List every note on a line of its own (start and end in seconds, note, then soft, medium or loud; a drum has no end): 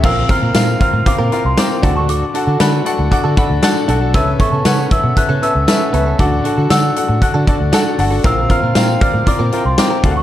0.03 0.23 A#1 loud
0.03 0.77 A#2 medium
0.03 0.19 C4 medium
0.03 0.21 C4 medium
0.03 0.19 F4 loud
0.03 0.22 F4 medium
0.03 0.22 A#4 medium
0.03 0.20 A#4 medium
0.03 0.22 F5 loud
0.03 0.31 E6 loud
0.03 kick loud
0.03 crash loud
0.29 0.47 C4 medium
0.29 0.41 C4 medium
0.29 0.47 F4 medium
0.29 0.42 F4 medium
0.29 0.47 A#4 medium
0.29 0.41 A#4 medium
0.29 0.47 F5 medium
0.29 0.80 F6 loud
0.29 kick medium
0.29 closed hi-hat medium
0.42 0.52 A#2 medium
0.42 0.54 C4 medium
0.42 0.54 F4 medium
0.42 0.54 A#4 medium
0.55 0.74 A#2 loud
0.55 0.72 C4 medium
0.55 0.73 F4 medium
0.55 0.73 A#4 medium
0.55 0.73 F5 loud
0.55 snare loud
0.55 closed hi-hat medium
0.55 tambourine medium
0.68 muted clean electric guitar stroke medium
0.80 0.98 C4 medium
0.80 0.98 F4 medium
0.80 0.98 A#4 medium
0.80 0.99 F5 medium
0.80 1.08 F6 loud
0.80 kick loud
0.80 closed hi-hat medium
0.93 1.03 A2 medium
0.93 muted clean electric guitar stroke soft
1.06 1.24 C4 medium
1.06 1.24 F4 medium
1.06 1.24 A#4 medium
1.06 1.24 F5 medium
1.06 1.46 D6 loud
1.06 muted clean electric guitar stroke soft
1.06 kick medium
1.06 closed hi-hat medium
1.19 1.29 A#2 medium
1.19 1.30 C4 medium
1.19 1.31 F4 medium
1.19 1.32 A#4 medium
1.31 1.44 C4 medium
1.31 1.49 C4 medium
1.31 1.44 F4 medium
1.31 1.50 F4 medium
1.31 1.50 A#4 medium
1.31 1.43 A#4 medium
1.31 1.50 F5 medium
1.31 closed hi-hat medium
1.45 1.54 C2 medium
1.45 1.59 C6 medium
1.45 muted clean electric guitar stroke soft
1.57 1.75 C4 loud
1.57 1.75 F4 medium
1.57 1.75 A#4 medium
1.57 1.76 G5 loud
1.57 1.98 D6 medium
1.57 muted clean electric guitar stroke soft
1.57 snare loud
1.57 closed hi-hat loud
1.57 tambourine medium
1.70 muted clean electric guitar stroke medium
1.82 2.22 D2 loud
1.82 2.57 D3 medium
1.82 1.96 D4 medium
1.82 2.24 D4 medium
1.82 1.95 F#4 medium
1.82 2.25 F#4 medium
1.82 2.25 A4 medium
1.82 1.94 A4 medium
1.82 2.25 F#5 medium
1.82 kick medium
1.82 closed hi-hat medium
1.96 2.07 D4 medium
1.96 2.08 F#4 medium
1.96 2.08 A4 medium
1.96 2.08 C#6 medium
2.08 2.24 D4 medium
2.08 2.24 F#4 medium
2.08 2.25 A4 medium
2.08 2.57 D6 medium
2.08 closed hi-hat medium
2.34 2.46 D4 medium
2.34 2.52 D4 medium
2.34 2.52 F#4 medium
2.34 2.46 F#4 medium
2.34 2.52 A4 medium
2.34 2.46 A4 medium
2.34 2.53 F#5 medium
2.34 closed hi-hat medium
2.47 2.57 D3 medium
2.47 2.58 D4 medium
2.47 2.59 F#4 medium
2.47 2.59 A4 medium
2.60 2.80 D3 medium
2.60 2.78 D4 medium
2.60 2.78 F#4 medium
2.60 2.78 A4 medium
2.60 2.78 F#5 loud
2.60 2.87 B5 medium
2.60 muted clean electric guitar stroke soft
2.60 snare loud
2.60 closed hi-hat medium
2.60 tambourine medium
2.73 muted clean electric guitar stroke medium
2.86 3.03 D4 medium
2.86 3.03 F#4 medium
2.86 3.04 A4 medium
2.86 3.04 F#5 loud
2.86 3.10 C#6 loud
2.86 closed hi-hat medium
2.98 3.08 D2 medium
2.98 muted clean electric guitar stroke soft
3.11 3.29 D4 loud
3.11 3.29 F#4 medium
3.11 3.29 A4 medium
3.11 3.29 F#5 loud
3.11 3.23 D6 loud
3.11 muted clean electric guitar stroke soft
3.11 kick medium
3.11 closed hi-hat loud
3.24 3.34 D3 medium
3.24 3.36 D4 medium
3.24 3.37 F#4 medium
3.24 3.37 A4 medium
3.37 3.49 D4 medium
3.37 3.55 D4 loud
3.37 3.55 F#4 medium
3.37 3.49 F#4 medium
3.37 3.55 A4 medium
3.37 3.48 A4 medium
3.37 3.55 F#5 loud
3.37 3.61 B5 medium
3.37 kick medium
3.37 closed hi-hat medium
3.50 3.60 D2 medium
3.50 muted clean electric guitar stroke soft
3.62 3.80 D4 loud
3.62 3.80 F#4 loud
3.62 3.81 A4 loud
3.62 3.81 F#5 loud
3.62 3.99 A5 medium
3.62 muted clean electric guitar stroke soft
3.62 snare loud
3.62 closed hi-hat medium
3.62 tambourine medium
3.75 muted clean electric guitar stroke soft
3.88 4.14 B1 medium
3.88 4.01 D4 medium
3.88 4.06 D4 medium
3.88 4.06 F#4 medium
3.88 4.00 F#4 loud
3.88 4.06 A4 medium
3.88 4.00 A4 medium
3.88 4.06 F#5 loud
3.88 closed hi-hat medium
4.01 4.13 D4 medium
4.01 4.13 F#4 medium
4.01 4.13 A4 medium
4.14 4.33 C#2 loud
4.14 4.87 C#3 medium
4.14 4.29 B3 medium
4.14 4.32 C#4 medium
4.14 4.29 C#4 medium
4.14 4.32 A4 medium
4.14 4.30 A4 medium
4.14 4.32 B4 medium
4.14 4.32 E5 loud
4.14 4.26 E6 medium
4.14 kick loud
4.14 closed hi-hat medium
4.39 4.51 B3 medium
4.39 4.57 C#4 medium
4.39 4.51 C#4 medium
4.39 4.57 A4 medium
4.39 4.51 A4 medium
4.39 4.58 B4 medium
4.39 4.58 E5 medium
4.39 4.93 C#6 medium
4.39 kick medium
4.39 closed hi-hat medium
4.52 4.62 C#3 medium
4.52 4.64 B3 medium
4.52 4.65 C#4 medium
4.52 4.64 A4 medium
4.65 4.85 C#3 loud
4.65 4.83 C#4 medium
4.65 4.83 A4 medium
4.65 4.83 B4 medium
4.65 4.83 F#5 loud
4.65 snare loud
4.65 closed hi-hat medium
4.65 tambourine medium
4.78 muted clean electric guitar stroke medium
4.91 5.08 C#4 medium
4.91 5.09 A4 medium
4.91 5.09 B4 medium
4.91 5.09 E5 medium
4.91 5.18 E6 loud
4.91 kick loud
4.91 closed hi-hat medium
5.04 5.13 B2 medium
5.04 muted clean electric guitar stroke medium
5.16 5.34 C#4 medium
5.16 5.34 A4 medium
5.16 5.35 B4 medium
5.16 5.35 E5 medium
5.16 5.43 F#6 loud
5.16 muted clean electric guitar stroke soft
5.16 kick medium
5.16 closed hi-hat medium
5.29 5.39 C#3 loud
5.29 5.41 B3 medium
5.29 5.41 C#4 medium
5.29 5.42 A4 medium
5.42 5.54 B3 medium
5.42 5.60 C#4 medium
5.42 5.54 C#4 medium
5.42 5.60 A4 medium
5.42 5.54 A4 medium
5.42 5.60 B4 medium
5.42 5.60 E5 medium
5.42 6.22 E6 medium
5.42 closed hi-hat medium
5.55 5.65 C#2 medium
5.55 muted clean electric guitar stroke soft
5.67 5.85 C#4 medium
5.67 5.85 A4 medium
5.67 5.86 B4 medium
5.67 5.86 E5 loud
5.67 muted clean electric guitar stroke soft
5.67 snare loud
5.67 closed hi-hat loud
5.67 tambourine medium
5.80 muted clean electric guitar stroke soft
5.93 6.13 C#2 loud
5.93 6.06 B3 medium
5.93 6.11 C#4 medium
5.93 6.05 C#4 medium
5.93 6.11 A4 medium
5.93 6.04 A4 medium
5.93 6.11 B4 medium
5.93 6.12 E5 medium
5.93 closed hi-hat medium
6.06 6.18 B3 medium
6.06 6.18 C#4 medium
6.06 6.18 A4 medium
6.18 6.39 D2 loud
6.18 6.92 D3 medium
6.18 6.34 D4 medium
6.18 6.37 D4 medium
6.18 6.34 F#4 medium
6.18 6.37 F#4 medium
6.18 6.37 A4 medium
6.18 6.35 A4 medium
6.18 6.37 F#5 loud
6.18 6.72 D6 medium
6.18 kick loud
6.18 closed hi-hat medium
6.44 6.56 D4 medium
6.44 6.62 D4 medium
6.44 6.57 F#4 medium
6.44 6.63 F#4 medium
6.44 6.56 A4 medium
6.44 6.63 A4 medium
6.44 6.63 F#5 medium
6.44 closed hi-hat medium
6.57 6.67 D3 medium
6.57 6.69 D4 medium
6.57 6.70 F#4 medium
6.57 6.69 A4 medium
6.70 6.90 D3 loud
6.70 6.88 D4 loud
6.70 6.88 F#4 medium
6.70 6.88 A4 medium
6.70 6.89 F#5 loud
6.70 7.23 E6 medium
6.70 muted clean electric guitar stroke soft
6.70 snare loud
6.70 closed hi-hat medium
6.70 tambourine medium
6.83 muted clean electric guitar stroke medium
6.96 7.14 D4 medium
6.96 7.14 F#4 medium
6.96 7.14 A4 medium
6.96 7.14 F#5 medium
6.96 closed hi-hat medium
7.08 7.19 A2 medium
7.08 muted clean electric guitar stroke soft
7.21 7.39 D4 medium
7.21 7.40 F#4 medium
7.21 7.40 A4 medium
7.21 7.40 F#5 medium
7.21 7.95 F#6 medium
7.21 muted clean electric guitar stroke soft
7.21 kick medium
7.21 closed hi-hat medium
7.34 7.44 D3 medium
7.34 7.46 D4 medium
7.34 7.47 F#4 medium
7.34 7.47 A4 medium
7.47 7.59 D4 medium
7.47 7.65 D4 medium
7.47 7.59 F#4 medium
7.47 7.65 F#4 medium
7.47 7.59 A4 medium
7.47 7.65 A4 medium
7.47 7.66 D5 medium
7.47 kick medium
7.47 closed hi-hat medium
7.60 7.70 D2 medium
7.72 7.88 D4 medium
7.72 7.91 D4 medium
7.72 7.85 F#4 medium
7.72 7.91 F#4 medium
7.72 7.84 A4 loud
7.72 7.91 A4 medium
7.72 7.91 F#5 loud
7.72 snare loud
7.72 closed hi-hat loud
7.72 tambourine medium
7.85 muted clean electric guitar stroke soft
7.98 8.18 G1 medium
7.98 8.16 D4 medium
7.98 8.16 F#4 medium
7.98 8.17 A4 medium
7.98 8.17 F#5 loud
7.98 muted clean electric guitar stroke soft
7.98 open hi-hat medium
8.11 8.23 D4 medium
8.11 8.24 F#4 medium
8.11 8.23 A4 medium
8.24 8.44 A#1 loud
8.24 8.98 A#2 medium
8.24 8.39 C4 medium
8.24 8.42 C4 medium
8.24 8.40 F4 medium
8.24 8.42 F4 medium
8.24 8.42 A#4 medium
8.24 8.40 A#4 medium
8.24 8.42 F5 loud
8.24 8.52 E6 loud
8.24 kick loud
8.24 closed hi-hat medium
8.49 8.61 C4 medium
8.49 8.68 C4 medium
8.49 8.62 F4 medium
8.49 8.68 F4 medium
8.49 8.61 A#4 medium
8.49 8.68 A#4 medium
8.49 8.68 F5 medium
8.49 9.01 F6 loud
8.49 kick medium
8.49 closed hi-hat medium
8.62 8.72 A#2 medium
8.62 8.74 C4 medium
8.62 8.74 F4 medium
8.62 8.74 A#4 medium
8.75 8.95 A#2 loud
8.75 8.93 C4 medium
8.75 8.93 F4 medium
8.75 8.94 A#4 medium
8.75 8.94 F5 loud
8.75 snare loud
8.75 closed hi-hat medium
8.75 tambourine medium
8.88 muted clean electric guitar stroke soft
9.01 9.19 C4 medium
9.01 9.19 F4 medium
9.01 9.19 A#4 medium
9.01 9.20 D5 medium
9.01 9.28 F6 loud
9.01 kick loud
9.01 closed hi-hat medium
9.13 9.24 A2 medium
9.13 muted clean electric guitar stroke soft
9.26 9.45 C4 medium
9.26 9.45 F4 medium
9.26 9.45 A#4 medium
9.26 9.45 D5 medium
9.26 9.63 D6 medium
9.26 muted clean electric guitar stroke soft
9.26 muted fingered electric bass stroke soft
9.26 kick medium
9.26 closed hi-hat loud
9.39 9.49 A#2 medium
9.39 9.51 C4 medium
9.39 9.52 F4 medium
9.39 9.52 A#4 medium
9.52 9.64 C4 medium
9.52 9.70 C4 medium
9.52 9.64 F4 medium
9.52 9.70 F4 medium
9.52 9.63 A#4 medium
9.52 9.71 A#4 medium
9.52 9.71 G5 medium
9.52 closed hi-hat medium
9.65 9.75 C2 medium
9.65 9.79 C6 medium
9.65 muted clean electric guitar stroke medium
9.77 9.95 C4 loud
9.77 9.96 F4 medium
9.77 9.96 A#4 medium
9.77 9.96 G5 loud
9.77 10.18 D6 medium
9.77 muted clean electric guitar stroke soft
9.77 snare loud
9.77 closed hi-hat loud
9.77 tambourine medium
9.90 10.03 C4 medium
9.90 10.04 F4 medium
9.90 10.04 A#4 medium
10.04 10.23 D2 loud
10.04 10.23 D3 medium
10.04 10.23 D4 medium
10.04 10.23 F#4 medium
10.04 10.23 A4 medium
10.04 10.11 F5 medium
10.04 kick loud
10.04 closed hi-hat medium
10.11 10.23 F#5 medium
10.16 10.23 C#6 medium
10.16 muted clean electric guitar stroke medium